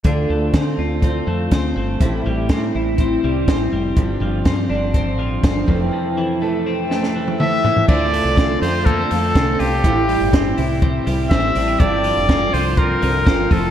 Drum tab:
CC |----------------|----------------|----------------|----------------|
HH |x---x---x---x---|x---x---x---x---|x---x---x---x---|----------------|
SD |----o-------o---|----o-------o---|----o-------o---|--------oo------|
T1 |----------------|----------------|----------------|-----------o----|
T2 |----------------|----------------|----------------|------------o---|
FT |----------------|----------------|----------------|--------------oo|
BD |o---o---o---o---|o---o---o---o---|o---o---o---o-o-|----------------|

CC |x---------------|----------------|----------------|
HH |--o-x-o-x-o-x-o-|x-o-x-o-x-o-x-o-|x-o-x-o-x-o-x-o-|
SD |----o-------o---|----o-------o---|----o-------o---|
T1 |----------------|----------------|----------------|
T2 |----------------|----------------|----------------|
FT |----------------|----------------|----------------|
BD |o---o---o---o---|o---o---o---o---|o---o---o---o-o-|